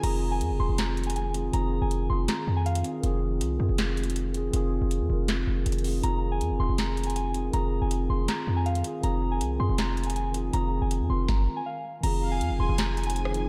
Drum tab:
CC |x-----------------------------------------------|------------------------------------------------|------------------------------------------------|------------------------------------------------|
HH |x-----------x-----------x-----x-x-x-x-----x-----|x-----------x-----------x-----------x--x--x-----|x-----------x-----------x-----x-x-x-x-----x-----|x-----------x-----------x-----------x-x-x-o-----|
CP |------------------------x-----------------------|------------------------x-----------------------|------------------------x-----------------------|------------------------x-----------------------|
SD |------------------------o-----------------------|------------------------o-----------------------|------------------------o-----------------------|------------------------o-----------------------|
BD |------------------------------------------------|------------------------------------------------|------------------------------------------------|------------------------------------------------|

CC |------------------------------------------------|------------------------------------------------|------------------------------------------------|------------------------------------------------|
HH |x-----------x-----------x-----x-x-x-x-----x-----|x-----------x-----------x-----------x--x--x-----|x-----------x-----------x-----x-x-x-x-----x-----|x-----------x-----------------------------------|
CP |------------------------x-----------------------|------------------------x-----------------------|------------------------x-----------------------|------------------------------------------------|
SD |------------------------o-----------------------|------------------------o-----------------------|------------------------o-----------------------|------------------------o-----------------------|
BD |------------------------------------------------|------------------------------------------------|------------------------------------------------|------------------------o-----------------------|

CC |x-----------------------------------------------|
HH |x-----------x-----------x-----x-x-x-x-----x-----|
CP |------------------------x-----------------------|
SD |------------------------o--------------r--------|
BD |------------------------------------------------|